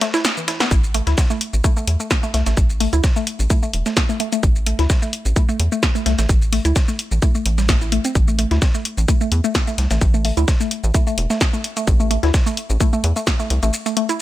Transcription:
0.01 A3, snare, closed hi-hat
0.14 E4, snare, closed hi-hat, shaker
0.25 snare, closed hi-hat, shaker
0.37 E3, shaker
0.48 E4, snare, closed hi-hat
0.60 B3, snare, closed hi-hat, shaker
0.71 A1, kick, closed hi-hat, shaker
0.84 shaker
0.94 A3, closed hi-hat
1.07 D2 E4, snare, closed hi-hat
1.18 kick, snare, closed hi-hat, shaker
1.30 A3, shaker
1.41 closed hi-hat
1.53 A1, shaker
1.64 A3, kick, closed hi-hat, shaker
1.77 A3, shaker
1.87 E2, closed hi-hat
2.00 A3, shaker
2.11 kick, snare, closed hi-hat, shaker
2.23 A3, closed hi-hat, shaker
2.34 C2 A3, snare, closed hi-hat
2.46 A1 A3, snare, closed hi-hat, shaker
2.57 A1, kick, closed hi-hat, shaker
2.70 shaker
2.80 A3, closed hi-hat, open hi-hat
2.93 D2 E4, closed hi-hat, shaker
3.04 kick, snare, closed hi-hat, shaker
3.16 A3, shaker
3.27 closed hi-hat
3.39 A1, shaker
3.50 A3, kick, closed hi-hat, shaker
3.63 A3, shaker
3.73 E1, closed hi-hat
3.86 A3, snare, shaker
3.97 kick, snare, closed hi-hat, shaker
4.09 A3, shaker
4.20 A3, closed hi-hat
4.32 A3, closed hi-hat, shaker
4.43 A1, kick, closed hi-hat, shaker
4.56 shaker
4.66 A3, closed hi-hat
4.79 D2 E4, snare, closed hi-hat
4.90 kick, snare, closed hi-hat, shaker
5.02 A3, shaker
5.13 closed hi-hat
5.25 A1, shaker
5.36 A3, kick, closed hi-hat, shaker
5.49 A3, shaker
5.60 E2, closed hi-hat
5.72 A3, shaker
5.83 kick, snare, closed hi-hat, shaker
5.95 A3, closed hi-hat, shaker
6.06 C2 A3, snare, closed hi-hat
6.18 A1 A3, snare, closed hi-hat, shaker
6.29 A1, kick, closed hi-hat, shaker
6.42 shaker
6.53 A3, closed hi-hat, open hi-hat
6.65 D2 E4, closed hi-hat, shaker
6.76 kick, snare, closed hi-hat, shaker
6.88 A3, shaker
6.99 closed hi-hat
7.12 A1, shaker
7.22 A3, kick, closed hi-hat, shaker
7.35 A3, shaker
7.46 A1, closed hi-hat
7.58 G3, snare, shaker
7.69 A3, kick, snare, closed hi-hat, shaker
7.81 E4, shaker
7.92 A3, closed hi-hat
8.05 C4, closed hi-hat, shaker
8.15 A1, kick, closed hi-hat, shaker
8.28 A3, shaker
8.39 A3, closed hi-hat
8.51 D2 E4, snare, closed hi-hat
8.62 kick, snare, closed hi-hat, shaker
8.74 A3, shaker
8.85 closed hi-hat
8.98 A1, shaker
9.08 A3, kick, closed hi-hat, shaker
9.21 A3, shaker
9.32 E2, closed hi-hat
9.44 A3, shaker
9.55 kick, snare, closed hi-hat, shaker
9.67 A3, closed hi-hat, shaker
9.78 C2, snare, closed hi-hat
9.91 A1 A3, snare, closed hi-hat, shaker
10.01 A1, kick, closed hi-hat, shaker
10.14 A3, shaker
10.25 A3, closed hi-hat, open hi-hat
10.37 D2 E4, closed hi-hat, shaker
10.48 kick, snare, closed hi-hat, shaker
10.60 A3, shaker
10.71 closed hi-hat
10.84 A1, shaker
10.94 A3, kick, closed hi-hat, shaker
11.07 A3, shaker
11.18 E1, closed hi-hat
11.30 A3, snare, shaker
11.41 kick, snare, closed hi-hat, shaker
11.53 A3, shaker
11.64 closed hi-hat
11.77 A3, closed hi-hat, shaker
11.87 A1, kick, closed hi-hat, shaker
12.00 A3, shaker
12.11 A3, closed hi-hat
12.23 D2 E4, snare, closed hi-hat
12.34 kick, snare, closed hi-hat, shaker
12.46 A3, shaker
12.57 closed hi-hat
12.70 A1, shaker
12.80 A3, kick, closed hi-hat, shaker
12.93 A3, shaker
13.04 E2, closed hi-hat
13.16 A3, shaker
13.27 kick, snare, closed hi-hat, shaker
13.39 A3, closed hi-hat, shaker
13.50 C2, closed hi-hat
13.63 A1 A3, closed hi-hat, shaker
13.73 closed hi-hat, shaker
13.86 A3, closed hi-hat, shaker
13.97 A3, closed hi-hat
14.09 E4, closed hi-hat, shaker

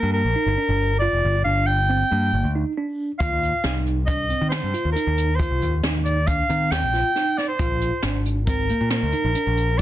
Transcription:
Already playing: A#3 A#4
0.03 G2
0.13 A#4
0.24 A#1
0.36 D#4
0.46 G1
0.58 D4
0.69 G1
0.99 F4 D5
1.12 F1
1.24 G1
1.44 G1 D4 F5
1.66 G5
1.89 C4
2.11 G2 A#3
2.33 G1
2.44 D2
2.55 D#4
2.77 D4
3.19 D#2 F4 F5, kick, closed hi-hat
3.32 D#2
3.43 closed hi-hat
3.64 C2 D#4, snare, closed hi-hat
3.86 closed hi-hat
4.06 D4 D#5, kick, closed hi-hat
4.30 C4, closed hi-hat
4.41 D#3
4.49 C5, snare, closed hi-hat
4.63 G2
4.74 F4, closed hi-hat
4.85 D#2
4.92 D#4 A#4, closed hi-hat
5.07 D#2
5.17 closed hi-hat
5.35 C5
5.39 F4, kick, closed hi-hat
5.51 C2
5.62 D#2, closed hi-hat
5.83 D#2 D#4, snare, closed hi-hat
6.05 D5, closed hi-hat
6.27 D4 F5, kick, closed hi-hat
6.49 D#3 C4, closed hi-hat
6.71 D#2 G5, snare, closed hi-hat
6.83 A#1
6.93 F4, snare, closed hi-hat
7.16 D#4, snare, closed hi-hat
7.38 D5, snare, closed hi-hat
7.48 C5
7.59 A#1 F4, kick, closed hi-hat
7.70 A#1
7.81 closed hi-hat
8.03 G#1 D4, snare, closed hi-hat
8.25 closed hi-hat
8.46 C4 A#4, kick, closed hi-hat
8.69 A#3, closed hi-hat
8.81 A#2
8.90 A#4, snare, closed hi-hat
9.03 D2
9.12 D#4, closed hi-hat
9.24 A#1
9.34 D4, closed hi-hat
9.47 A#1
9.57 closed hi-hat
9.78 D5, closed hi-hat

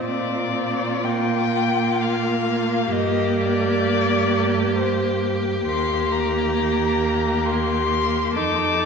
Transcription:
Already playing: C4
0.04 A#2 F4 D5
1.04 A#3 G5
2.00 F5
2.91 G2 G4 D#5
3.37 D5
4.75 C5
5.65 D#2 A#3 C6
6.11 A#5
7.45 C6
8.36 F2 D#4 A4 D6

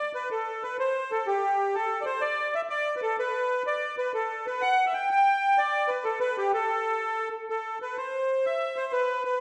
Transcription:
Already playing: D5
0.15 B4
0.31 A4
0.63 B4
0.80 C5
1.12 A4
1.27 G4
1.75 A4
2.01 D5
2.05 C5
2.21 D5
2.55 E5
2.70 D5
2.96 B4
3.02 A4
3.19 B4
3.67 D5
3.98 B4
4.14 A4
4.46 B4
4.61 F#5
4.86 E5
4.94 G5
5.11 G5
5.58 D5
5.88 B4
6.04 A4
6.20 B4
6.38 G4
6.54 A4
7.50 A4
7.82 B4
7.97 C5
8.46 E5
8.76 C5
8.93 B4
9.25 B4

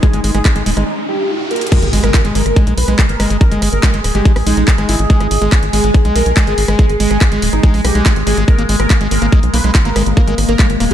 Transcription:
Already playing: G#3 D#4, riser
0.03 G#3 G#4, kick, closed hi-hat
0.13 G#1 G#3, closed hi-hat
0.24 G#1 G#3, open hi-hat
0.35 G#1 G#3 G#4, cross-stick, closed hi-hat
0.45 G#3, kick, clap, closed hi-hat
0.56 G#1 G#3, closed hi-hat
0.66 D#1 G#3, open hi-hat
0.77 G#1 G#3 D#4, cross-stick, closed hi-hat
1.08 G4
1.51 A#4, closed hi-hat
1.56 closed hi-hat
1.61 closed hi-hat
1.67 closed hi-hat
1.72 G#3 G#4 A#4, kick, cross-stick, closed hi-hat, crash, impact
1.82 G#1, closed hi-hat
1.93 G#1 G#3, open hi-hat
2.04 G#1 G#3 A#4, cross-stick, closed hi-hat
2.14 kick, clap, closed hi-hat
2.25 G#1 G#3, closed hi-hat
2.35 G#1 G#3 A#4, open hi-hat
2.46 G#1, cross-stick, closed hi-hat
2.56 G#3, kick, closed hi-hat
2.67 B1 G#3, closed hi-hat
2.77 B1 B4, open hi-hat
2.88 B1 G#3, cross-stick, closed hi-hat
2.99 kick, clap, closed hi-hat
3.09 G#1 A#4, closed hi-hat
3.20 G#1 G#3, cross-stick, open hi-hat
3.30 G#1 G#3, closed hi-hat
3.41 A#4, kick, closed hi-hat
3.51 G#1 G#3, closed hi-hat
3.62 G#1 G#3, cross-stick, open hi-hat
3.73 G#1 A#4, closed hi-hat
3.83 G#3, kick, clap, closed hi-hat
3.94 G#1 G#3, closed hi-hat
4.04 D#1, cross-stick, open hi-hat
4.15 G#1 G#3 G4, closed hi-hat
4.25 kick, closed hi-hat
4.36 A#1, cross-stick, open hi-hat
4.47 A#1 G#3 D#4, open hi-hat
4.57 A#1 G#3, closed hi-hat
4.68 kick, clap, closed hi-hat
4.78 G#1 G#3, cross-stick, closed hi-hat
4.89 G#1 G#3 E4, open hi-hat
4.99 G#1, closed hi-hat
5.10 G#3 G#4, kick, closed hi-hat
5.20 G#1 G#3, cross-stick, closed hi-hat
5.31 G#1, open hi-hat
5.42 G#1 G#3 G#4
5.52 G#3, kick, cross-stick, clap, closed hi-hat
5.63 G#1, closed hi-hat
5.73 G#1 G#3 G#4, open hi-hat
5.84 G#1 G#3, closed hi-hat
5.94 kick, cross-stick, closed hi-hat
6.05 B1 G#3, closed hi-hat
6.16 B1 G#3 A#4, open hi-hat
6.26 B1, closed hi-hat
6.37 G#3, kick, cross-stick, clap, closed hi-hat
6.47 G#1 G#3 G#4, closed hi-hat
6.58 G#1, open hi-hat
6.68 G#1 G#3, cross-stick, closed hi-hat
6.79 G#4, kick, closed hi-hat
6.89 G#1, closed hi-hat
7.00 G#1 G#3, open hi-hat
7.11 G#1 G#3 G#4, cross-stick, closed hi-hat
7.21 kick, clap, closed hi-hat
7.32 G#1 G#3, closed hi-hat
7.42 D#1 G#3, open hi-hat
7.53 G#1 D#4, cross-stick, closed hi-hat
7.63 G#3, kick, closed hi-hat
7.74 A#1 G#3, open hi-hat
7.85 B1 G4, cross-stick, open hi-hat
7.95 B1 G#3, closed hi-hat
8.06 G#3, kick, clap, closed hi-hat
8.16 G#1, closed hi-hat
8.27 G#1 G#3 G#4, cross-stick, open hi-hat
8.37 G#1 G#3, closed hi-hat
8.48 A#3 A#4, kick, cross-stick, closed hi-hat
8.59 G#1 A#3, closed hi-hat
8.69 G#1 G#3, open hi-hat
8.80 G#1 A#4, cross-stick, closed hi-hat
8.90 A#3, kick, clap, closed hi-hat
9.01 G#1 G#3, closed hi-hat
9.11 G#1 A#4, open hi-hat
9.22 G#1 A#3, cross-stick, closed hi-hat
9.32 G#3, kick, closed hi-hat
9.43 B1, closed hi-hat
9.54 B1 A#3 B4, open hi-hat
9.64 B1 G#3, cross-stick, closed hi-hat
9.75 kick, clap, closed hi-hat
9.85 G#1 A#3 A#4, closed hi-hat
9.96 G#1 G#3, cross-stick, open hi-hat
10.06 G#1, closed hi-hat
10.17 A#3 A#4, kick, closed hi-hat
10.28 G#1 G#3, closed hi-hat
10.38 G#1, cross-stick, open hi-hat
10.49 G#1 A#3 A#4, closed hi-hat
10.59 G#3, kick, clap, closed hi-hat
10.70 G#1, closed hi-hat
10.80 D#1 A#3, cross-stick, open hi-hat

